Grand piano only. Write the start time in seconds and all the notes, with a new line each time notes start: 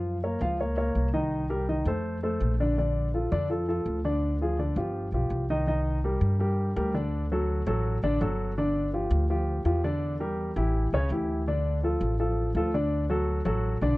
Already playing: F3 F4 F5
0.24 A#3 A#4 C#5
0.41 F3 F4 F5
0.60 A#3 A#4 C#5
0.77 A#3 A#4 C#5
1.13 D#3 D#4 D#5
1.50 G3 G4 A#4
1.69 D#3 D#4 D#5
1.87 A3 A4 C5
2.23 A3 A4 C5
2.60 D3 D4 D5
2.78 D3 D4 D5
3.14 F3 F4 A4
3.32 D3 D4 D5
3.50 F3 F4 A4
3.68 F3 F4 A4
4.05 D3 D4 D5
4.41 F3 F4 G#4
4.59 D3 D4 D5
4.77 F3 F4 G4
5.14 F3 F4 G4
5.50 D#3 D#4 D#5
5.67 D#3 D#4 D#5
6.04 G3 G4 A#4
6.39 G3 G4 A#4
6.76 G3 G4 A#4
6.94 D3 D4 D5
7.32 F#3 F#4 A4
7.67 F#3 F#4 A4
8.04 D3 D4 D5
8.21 F#3 F#4 A4
8.58 D3 D4 D5
8.93 F3 F4 G4
9.30 F3 F4 G4
9.65 F3 F4 G4
9.84 D3 D4 D5
10.20 G3 G4 A#4
10.56 E3 E4 G4
10.94 C#3 C#4 C#5
11.11 E3 E4 G4
11.47 D3 D4 D5
11.83 F3 F4 A4
12.19 F3 F4 A4
12.56 F3 F4 A4
12.74 D3 D4 D5
13.10 F#3 F#4 A4
13.45 F#3 F#4 A4
13.82 D3 D4 D5